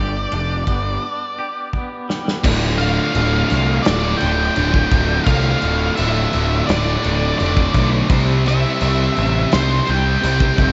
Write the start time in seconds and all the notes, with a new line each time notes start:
Already playing: G1 G2 G4 D5
0.32 F1 D4, ride
0.67 G1 B3, kick, ride
1.02 D4
1.39 G4
1.73 B3, kick
2.09 G3, snare
2.28 snare
2.44 D1 D2 A2 D3 A3 F4 D5, kick, crash
2.78 D2 A2 D3 F5, crash
3.13 D1 D2 A2 D3, crash
3.50 C2 D2 A2 D3, crash
3.83 D2 A2 D3 D5, snare, crash
3.87 D1
4.17 D2 A2 G5, crash
4.21 D1 D3
4.56 D1 D2 A2 D3, crash
4.74 kick
4.91 D1 D2 A2 D3, kick, crash
5.24 C2 D2 A2 D3 F5, kick, crash
5.62 D1 D2 A2 D3, crash
5.96 D1 D2 A2 D3 E5, crash
6.32 D1 D2 A2 D3, crash
6.67 D1 D2 A2 D3 D5, snare, crash
7.03 D1 D2 A2 D3, crash
7.39 F1 D2 A2 D3 D5, crash
7.57 kick
7.74 B1 D2 A2 D3, kick, crash
8.09 C2 C3 G3 C4 E4 C5, kick, crash
8.45 C3 G3 C4 E5, snare, crash
8.80 C2 C3 G3 C4, crash
9.15 A1 C3 G3 C4, crash
9.50 C2 C3 G3 C4 C5, snare, crash
9.86 C2 C3 G3 C4, crash
9.90 G5
10.21 C2 C3 G3 C4, crash
10.40 kick
10.57 F1 C3 G3 C4, kick, crash